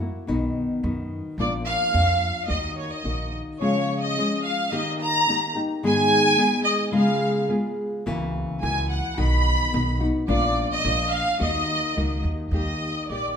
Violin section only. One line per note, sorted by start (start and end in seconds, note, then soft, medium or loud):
1.40 1.52 D5 medium
1.66 2.44 F5 loud
2.48 2.76 D#5 medium
2.77 2.90 C#5 medium
2.91 3.32 D#5 medium
3.59 3.99 C#5 medium
4.01 4.41 D#5 medium
4.45 4.72 F5 medium
4.72 4.91 D#5 loud
5.01 5.52 A#5 loud
5.86 6.63 G#5 loud
6.64 6.90 D#5 medium
6.93 7.45 F5 medium
8.62 8.88 G#5 medium
8.90 9.15 F#5 medium
9.19 10.00 B5 medium
10.27 10.66 D5 medium
10.71 11.10 D#5 loud
11.11 11.39 F5 medium
11.41 12.21 D#5 medium
12.53 13.05 D#5 medium
13.09 13.37 D5 medium